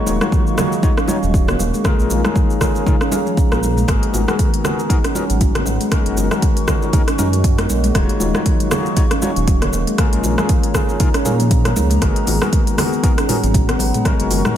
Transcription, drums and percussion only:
0.06 high bongo, high conga, cabasa
0.21 cross-stick, low bongo, high conga, cabasa
0.32 kick, cabasa
0.47 cabasa
0.58 cross-stick, high bongo, low bongo, low conga, cabasa
0.72 cabasa
0.82 kick, high conga, cabasa
0.98 cross-stick, cabasa
1.08 high bongo, high conga, cabasa
1.23 cabasa
1.34 kick, high conga, cabasa
1.48 cross-stick, low conga, cabasa
1.59 low bongo, cabasa
1.74 cabasa
1.84 kick, cross-stick, low bongo, low conga, cabasa
1.99 cabasa
2.10 high bongo, high conga, cabasa
2.24 cross-stick, low bongo, high conga, cabasa
2.36 kick, cabasa
2.50 cabasa
2.61 kick, cross-stick, high bongo, low bongo, low conga, cabasa
2.75 high bongo, cabasa
2.87 kick, low conga, cabasa
3.01 cross-stick, cabasa
3.12 low bongo, high conga, cabasa
3.27 cabasa
3.37 kick, cabasa
3.52 cross-stick, high bongo, high conga, cabasa
3.63 high conga, cabasa
3.77 high conga, cabasa
3.88 kick, cross-stick, closed hi-hat, low bongo, low conga, cabasa
4.03 closed hi-hat
4.14 high bongo, high conga, cabasa
4.28 cross-stick, low bongo, high conga, cabasa
4.39 kick, closed hi-hat, cabasa
4.54 closed hi-hat, cabasa
4.65 cross-stick, high bongo, low bongo, low conga, cabasa
4.79 cabasa
4.90 kick, closed hi-hat, high conga, cabasa
5.04 cross-stick, closed hi-hat, cabasa
5.15 high bongo, high conga, cabasa
5.30 closed hi-hat, cabasa
5.41 kick, closed hi-hat, high conga, cabasa
5.55 cross-stick, closed hi-hat, low conga, cabasa
5.66 low bongo, cabasa
5.81 closed hi-hat, cabasa
5.92 kick, cross-stick, closed hi-hat, low bongo, low conga, cabasa
6.06 closed hi-hat
6.17 high bongo, cabasa
6.31 cross-stick, low bongo, high conga, cabasa
6.42 kick, closed hi-hat, cabasa
6.57 closed hi-hat, cabasa
6.68 kick, cross-stick, high bongo, low bongo, low conga, cabasa
6.82 high bongo, cabasa
6.93 kick, closed hi-hat, low conga, cabasa
7.08 cross-stick, closed hi-hat, cabasa
7.18 low bongo, high conga, cabasa
7.33 closed hi-hat, cabasa
7.44 kick, closed hi-hat, cabasa
7.58 cross-stick, closed hi-hat, high bongo, high conga, cabasa
7.70 high conga, cabasa
7.84 closed hi-hat, high conga, cabasa
7.95 kick, cross-stick, closed hi-hat, low bongo, low conga, cabasa
8.09 closed hi-hat
8.20 high bongo, high conga, cabasa
8.34 cross-stick, low bongo, high conga, cabasa
8.46 kick, closed hi-hat, cabasa
8.60 closed hi-hat, cabasa
8.71 cross-stick, high bongo, low bongo, low conga, cabasa
8.86 cabasa
8.96 kick, closed hi-hat, high conga, cabasa
9.11 cross-stick, closed hi-hat, cabasa
9.22 high bongo, high conga, cabasa
9.36 closed hi-hat, cabasa
9.47 kick, closed hi-hat, high conga, cabasa
9.62 cross-stick, closed hi-hat, low conga, cabasa
9.73 low bongo, cabasa
9.87 closed hi-hat, cabasa
9.98 kick, cross-stick, closed hi-hat, low bongo, low conga, cabasa
10.13 closed hi-hat
10.24 high bongo, cabasa
10.38 cross-stick, low bongo, high conga, cabasa
10.49 kick, closed hi-hat, cabasa
10.63 closed hi-hat, cabasa
10.74 kick, cross-stick, high bongo, low bongo, low conga, cabasa
10.89 high bongo, cabasa
11.00 kick, closed hi-hat, low conga, cabasa
11.14 cross-stick, closed hi-hat, cabasa
11.25 low bongo, high conga, cabasa
11.40 closed hi-hat, cabasa
11.51 kick, closed hi-hat, cabasa
11.65 cross-stick, closed hi-hat, high bongo, high conga, cabasa
11.76 high conga, cabasa
11.90 closed hi-hat, high conga, cabasa
12.02 kick, cross-stick, closed hi-hat, low bongo, low conga, cabasa
12.16 closed hi-hat
12.27 open hi-hat, high bongo, high conga, cabasa
12.41 cross-stick, low bongo, high conga, cabasa
12.53 kick, closed hi-hat, cabasa
12.67 closed hi-hat, cabasa
12.78 cross-stick, open hi-hat, high bongo, low bongo, low conga, cabasa
12.93 cabasa
13.03 kick, closed hi-hat, high conga, cabasa
13.18 cross-stick, closed hi-hat, cabasa
13.29 mid tom, open hi-hat, high bongo, high conga, cabasa
13.44 closed hi-hat, cabasa
13.54 kick, closed hi-hat, mid tom, high conga, cabasa
13.69 cross-stick, closed hi-hat, low conga, cabasa
13.79 open hi-hat, low bongo, cabasa
13.94 closed hi-hat, mid tom, cabasa
14.05 kick, cross-stick, closed hi-hat, low bongo, low conga, cabasa
14.20 closed hi-hat
14.31 open hi-hat, high bongo, cabasa
14.45 cross-stick, mid tom, low bongo, high conga, cabasa

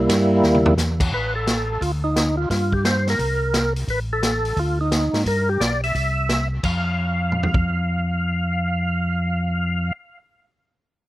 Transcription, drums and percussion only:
0.09 kick, snare, hi-hat pedal, ride
0.43 snare
0.54 high tom
0.66 floor tom
0.78 snare, hi-hat pedal
1.00 kick, crash
1.12 kick
1.47 snare, closed hi-hat
1.81 kick, open hi-hat
2.16 snare, closed hi-hat
2.50 kick, snare, open hi-hat
2.72 kick
2.85 snare, closed hi-hat
3.07 snare, open hi-hat
3.19 kick, open hi-hat
3.54 snare, closed hi-hat
3.76 open hi-hat
3.88 kick, open hi-hat
4.23 snare, closed hi-hat
4.45 open hi-hat
4.57 kick, open hi-hat
4.92 snare, closed hi-hat
5.14 snare, open hi-hat
5.26 kick, open hi-hat
5.61 snare, closed hi-hat
5.83 open hi-hat
5.95 kick, open hi-hat
6.29 snare, closed hi-hat
6.63 kick, crash
7.32 mid tom
7.43 floor tom
7.54 kick

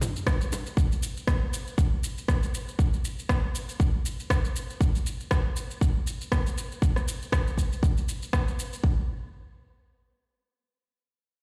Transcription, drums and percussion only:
0.01 mid tom, high bongo, low bongo, shaker
0.16 shaker
0.27 kick, cross-stick, low bongo, shaker
0.41 shaker
0.52 high bongo, low bongo, shaker
0.66 shaker
0.77 kick, shaker
0.92 shaker
1.03 shaker
1.17 shaker
1.27 kick, cross-stick, shaker
1.53 shaker
1.67 shaker
1.78 kick, shaker
2.04 shaker
2.18 shaker
2.28 kick, cross-stick, shaker
2.43 shaker
2.54 shaker
2.68 shaker
2.79 kick, shaker
2.94 shaker
3.05 shaker
3.19 shaker
3.29 kick, cross-stick, shaker
3.55 shaker
3.69 shaker
3.80 kick, shaker
4.06 shaker
4.20 shaker
4.30 kick, cross-stick, shaker
4.45 shaker
4.56 shaker
4.70 shaker
4.81 kick, shaker
4.95 shaker
5.06 shaker
5.20 shaker
5.31 kick, cross-stick, shaker
5.56 shaker
5.71 shaker
5.81 kick, shaker
6.07 shaker
6.21 shaker
6.32 kick, cross-stick, shaker
6.47 shaker
6.58 shaker
6.72 shaker
6.82 kick, shaker
6.96 cross-stick, shaker
7.08 shaker
7.22 shaker
7.32 kick, cross-stick, shaker
7.47 shaker
7.58 kick, shaker
7.73 shaker
7.83 kick, shaker
7.97 shaker
8.09 shaker
8.23 shaker
8.33 kick, cross-stick, shaker
8.48 shaker
8.59 shaker
8.73 shaker
8.84 kick

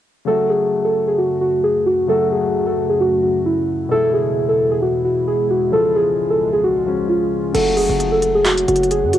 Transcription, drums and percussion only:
7.55 closed hi-hat, crash
7.77 open hi-hat
8.00 closed hi-hat
8.22 closed hi-hat
8.46 clap, closed hi-hat
8.58 closed hi-hat
8.68 closed hi-hat
8.76 closed hi-hat
8.83 closed hi-hat
8.91 closed hi-hat
9.13 closed hi-hat

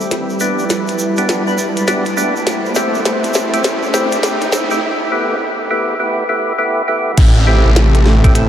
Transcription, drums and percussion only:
0.00 shaker
0.11 snare, closed hi-hat, shaker
0.29 shaker
0.40 shaker
0.59 shaker
0.70 snare, closed hi-hat, shaker
0.87 closed hi-hat, shaker
0.99 shaker
1.17 closed hi-hat, shaker
1.29 snare, closed hi-hat, shaker
1.47 shaker
1.58 shaker
1.77 closed hi-hat, shaker
1.87 snare, closed hi-hat, shaker
2.05 closed hi-hat, shaker
2.17 shaker
2.36 shaker
2.47 snare, closed hi-hat, shaker
2.66 shaker
2.75 snare, shaker
2.95 shaker
3.05 snare, closed hi-hat, shaker
3.24 closed hi-hat, shaker
3.33 snare, shaker
3.54 closed hi-hat, shaker
3.64 snare, closed hi-hat, shaker
3.83 shaker
3.94 snare, shaker
4.12 closed hi-hat, shaker
4.23 snare, closed hi-hat, shaker
4.41 closed hi-hat, shaker
4.52 snare, shaker
4.71 shaker
7.18 kick, closed hi-hat, crash
7.76 snare, closed hi-hat
7.95 closed hi-hat
8.06 snare
8.24 kick, closed hi-hat
8.35 closed hi-hat

